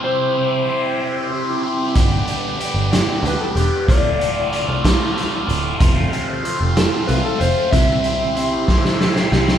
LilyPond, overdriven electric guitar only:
\new Staff \with { instrumentName = "Overdriven electric guitar" } { \time 6/8 \key c \major \tempo 4. = 63 <c g c' e' g' c''>8 <c' e' g' c''>8 <c' e' g' c''>8 <c' e' g' c''>8 <c' e' g' c''>8 <c' e' g' c''>8 | <g, d g b d' g'>8 <g b d' g'>8 <g b d' g'>8 <g b d' g'>8 <g b d' g'>8 <g b d' g'>8 | <d, a, d a f'>8 <d a f'>8 <a, d a f'>8 <d a f'>8 <a, d a f'>8 <d a f'>8 | <f, c f a c' f'>8 <f a c' f'>8 <f a c' f'>8 <f a c' f'>8 <f a c' f'>8 <f a c' f'>8 |
<c g c' e' g' c''>8 <c' e' g' c''>8 <c' e' g' c''>8 <c' e' g' c''>8 <c' e' g' c''>8 <c' e' g' c''>8 | }